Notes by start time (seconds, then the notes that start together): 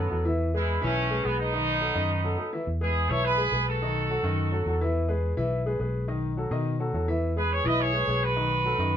Already playing: F#3 B3
0.10 E2 F#3 F#4 A4
0.25 E3 E4 E5
0.54 G#3 E4 G#4 B4
0.81 B1 E3 A3 C#4 E4 E5
1.10 G#3 G#4 B4
1.24 B1 G#3 B3 G#4 B4
1.39 B3 D#4
1.53 D#3 D#4 D#5
1.81 F#3 F#4 A4
1.95 F#2 D#3 D#4 D#5
2.24 F#3 F#4 A4
2.37 F#3 F#4 A4
2.53 E3 E4 E5
2.67 E2
2.81 G#3 E4 G#4 B4
3.09 B1 E3 E4 A4 C#5 E5
3.25 G#4 B4
3.38 G#3 G#4 B4
3.52 B1 G#3 G#4 B4
3.68 F#4 A4
3.82 D#3 D#4 D#5
4.10 F#3 F#4 A4
4.23 F#2 D#3 D#4 D#5
4.52 F#3 F#4 A4
4.66 E2 F#3 F#4 A4
4.81 E3 E4 E5
5.08 G#3 G#4 B4
5.37 B1 E3 E4 E5
5.66 G#3 G#4 B4
5.80 B1 G#3 G#4 B4
6.08 D#3 D#4 D#5
6.37 F#3 F#4 A4
6.51 B2 D#3 D#4 D#5
6.79 F#3 F#4 A4
6.93 E2 F#3 F#4 A4
7.08 E3 E4 E5
7.36 G#3 G#4 B4
7.52 G#4 C#5
7.64 B1 E3 E4 B4 D#5 E5
7.80 G#4 C#5
7.93 G#3 G#4 B4
8.08 B1 G#3 G#4 B4
8.23 F#4 B4
8.36 D#3 D#4 D#5
8.65 F#3 F#4 A4
8.78 F#2 D#3 D#4 D#5